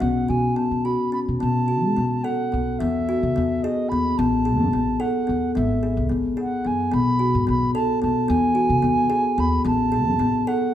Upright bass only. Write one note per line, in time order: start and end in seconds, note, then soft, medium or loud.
0.01 0.24 B1 medium
0.30 0.52 B2 medium
0.71 0.94 B2 medium
1.28 1.39 B2 medium
1.43 1.84 B2 medium
1.84 1.95 G#3 medium
1.97 2.20 B2 medium
2.53 2.75 B1 medium
2.81 3.24 E2 medium
3.23 3.33 C#3 medium
3.37 3.58 E2 medium
3.92 4.13 D#2 medium
4.19 4.61 A1 loud
4.61 4.71 F#2 medium
4.74 4.95 A1 medium
5.29 5.50 D#2 medium
5.57 5.98 G#1 medium
5.97 6.07 C#2 medium
6.11 6.33 G#1 medium
6.66 6.88 F#2 medium
6.93 7.36 B1 medium
7.35 7.45 G#2 medium
7.48 7.70 B1 medium
8.04 8.25 B1 medium
8.30 8.71 E2 loud
8.70 8.81 C#3 medium
8.84 9.05 E2 medium
9.38 9.60 D#2 medium
9.65 10.06 A1 medium
10.06 10.17 F#2 medium
10.20 10.42 A1 medium